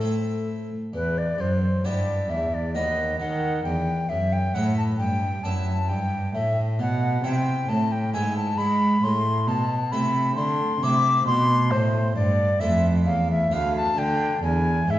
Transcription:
Already playing: A2 A4
0.00 A3 C4 E4
0.93 E2 B4
1.18 D5
1.38 F#2 C5
1.84 G2 B3 E4 G4 D5
2.29 E2 E5
2.54 D5
2.74 D#2 B3 F#4 B4 D#5
3.20 D#3 F#5
3.64 E2 G5
4.09 F#2 E5
4.33 G5
4.54 A2 B3 E4 E5 F#5
4.77 A5
4.98 G2 G5
5.44 F#2 B3 E4 E5 A5
5.89 G2 G5
6.34 A2 E5
6.79 B2 F#5
7.24 C3 C4 E4 E5 G5
7.69 A2 A5
7.92 G5
8.13 G#2 B3 E4 E5 G#5
8.37 A5
8.58 G#3 B5
9.03 A2 C6
9.47 B2 A5
9.92 C3 A3 E4 E5 B5
10.36 D3 C6
10.81 C3 A3 E4 E5 D6
11.26 B2 C6
11.71 A2 C5
12.16 G2 D5
12.60 F2 A3 E4 C5 E5
13.06 E2 F5
13.31 E5
13.51 D2 B3 F4 B4 F5
13.76 A5
13.97 D3 G5
14.43 E2 G#5
14.88 G#2 E5

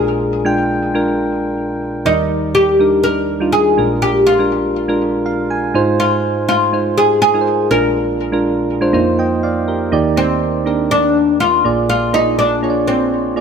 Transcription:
Already playing: A#1 A#2 G#3 D4 F4 G#4 A#4
0.45 G#3 D4 F4 G5
0.94 G#3 D4 F4 A#4
2.05 D#2 D#3 G3 D#4 A#4 D5
2.55 G4
2.79 G3 D4 D#4 A#4
3.04 A#4
3.40 G3 D4 D#4 F4
3.52 G#4
3.77 A#1 A#2 G#3 D4 F4 A#4
4.02 G4
4.27 F4
4.39 G#3 D4 F4 A#4
4.88 G#3 D4 F4 A#4
5.26 F5
5.50 G#5
5.74 G#2 G#3 D#4 F4 C5
6.00 F4
6.49 F4
6.73 G#3 D#4 F4 C5
6.98 G#4
7.22 G#4
7.34 G#3 D#4 F4 A#4
7.41 C5
7.70 A#1 A#2 G#3 D4 F4 A#4
8.32 G#3 D4 F4 A#4
8.81 G#3 D4 F4 C5
8.93 F2 A#3 D#4 F4 C5
9.19 D#5 G5
9.43 D5 F5
9.68 G4 A#4
9.92 D#2 D#3 A#3 D#4 G4 D5
10.16 A#3 C4 D#4 G4 D5
10.66 A#3 D4 G4 A#4
10.91 D4
11.40 F4
11.64 A#1 A#2 A#3 F4 G#4 D5
11.89 F4
12.13 A#3 D#4 F4 G#4 D5
12.39 D4
12.63 A#3 F4 G#4 C#5
12.70 D5
12.88 C4
13.36 A#3 F4 G#4 D5

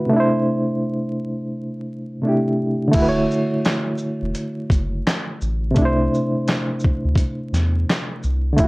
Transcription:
Already playing: D3 A3 E4 F#4 B4
0.06 C3 A3
0.13 D4 E4
0.20 C5
2.21 C3 A3 D4
2.27 E4 G4
2.88 D3 A3
2.93 D1 E4, kick, closed hi-hat, crash
2.99 F#4 B4
3.09 C#5
3.31 shaker
3.65 snare, clap, closed hi-hat
3.98 shaker
4.22 E1
4.35 closed hi-hat
4.70 F#1, kick, closed hi-hat, shaker
5.07 snare, clap, closed hi-hat
5.41 A1, shaker
5.71 C3 A3
5.76 C2 D4, kick, closed hi-hat
5.82 E4 C5
6.14 shaker
6.48 snare, clap, closed hi-hat
6.80 shaker
6.84 kick
7.05 D2
7.15 kick, closed hi-hat
7.53 E2, snare, closed hi-hat, shaker
7.90 snare, clap, closed hi-hat
8.23 C2, shaker
8.53 D3 A3
8.58 D1 E4, kick, closed hi-hat
8.64 F#4

